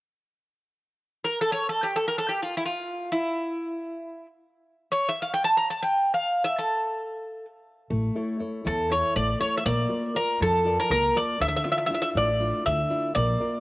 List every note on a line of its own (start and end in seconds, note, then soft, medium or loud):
1.24 1.41 A#4 medium
1.41 1.52 A4 medium
1.52 1.69 C#5 medium
1.69 1.85 A4 medium
1.83 1.97 G4 medium
1.96 2.07 A4 medium
2.08 2.18 A#4 medium
2.18 2.31 A4 medium
2.29 2.42 G4 medium
2.43 2.57 F4 medium
2.57 2.65 E4 medium
2.66 3.11 F4 medium
3.12 4.26 E4 medium
4.92 5.08 C#5 medium
5.09 5.22 E5 medium
5.22 5.33 F5 medium
5.34 5.44 G5 medium
5.44 5.56 A5 medium
5.57 5.70 A#5 medium
5.70 5.82 A5 medium
5.83 6.14 G5 medium
6.14 6.44 F5 medium
6.44 6.57 E5 medium
6.59 7.45 A4 medium
7.90 8.08 A1 medium
7.90 8.39 A3 medium
8.15 8.38 E4 soft
8.15 8.39 A4 soft
8.15 8.39 C#5 soft
8.39 8.80 E4 soft
8.39 8.80 A4 soft
8.39 8.80 C#5 soft
8.65 9.01 E2 medium
8.65 9.14 E3 medium
8.65 8.92 A4 medium
8.90 9.30 E4 soft
8.90 9.30 A4 soft
8.90 9.31 C#5 soft
8.90 9.16 C#5 medium
9.15 9.33 A1 medium
9.15 9.64 A3 medium
9.15 9.39 D5 medium
9.40 9.60 E4 soft
9.40 9.60 A4 soft
9.40 9.57 C#5 medium
9.40 9.61 C#5 medium
9.58 9.65 E5 medium
9.66 9.83 A#1 medium
9.66 10.14 A#3 medium
9.66 10.17 D5 medium
9.89 10.14 F4 soft
9.89 10.14 A#4 soft
9.89 10.15 D5 medium
10.15 10.55 F4 soft
10.15 10.55 A#4 soft
10.15 10.39 A#4 medium
10.15 10.56 D5 soft
10.40 10.76 F2 medium
10.40 10.89 F3 medium
10.40 10.79 A4 medium
10.65 11.05 F4 soft
10.65 11.06 A#4 soft
10.65 11.06 D5 medium
10.80 10.90 A#4 medium
10.90 11.08 C#2 medium
10.90 11.39 A#3 medium
10.90 11.17 A#4 medium
11.15 11.35 F4 soft
11.15 11.36 A#4 soft
11.15 11.36 D5 soft
11.15 11.39 D5 medium
11.40 11.58 D2 medium
11.40 11.89 D3 medium
11.40 11.47 E5 medium
11.48 11.55 E5 medium
11.56 11.63 E5 medium
11.64 11.88 D4 soft
11.64 11.89 E4 soft
11.64 11.89 F4 soft
11.64 11.70 E5 medium
11.72 11.77 E5 medium
11.78 11.85 E5 medium
11.86 12.30 D4 soft
11.86 12.30 E4 soft
11.86 11.93 E5 medium
11.91 12.31 F4 soft
11.91 12.01 E5 medium
12.02 12.09 E5 medium
12.15 12.50 A1 medium
12.15 12.64 A3 medium
12.15 12.65 D5 medium
12.39 12.80 D4 soft
12.39 12.80 E4 soft
12.39 12.80 F4 medium
12.65 12.83 D2 medium
12.65 13.14 D3 medium
12.65 13.14 E5 medium
12.90 13.10 D4 soft
12.90 13.10 E4 soft
12.90 13.11 F4 medium
13.15 13.33 A#1 medium
13.15 13.60 A#3 medium
13.15 13.60 D5 medium
13.40 13.60 F4 soft
13.40 13.60 A#4 soft
13.40 13.60 D5 soft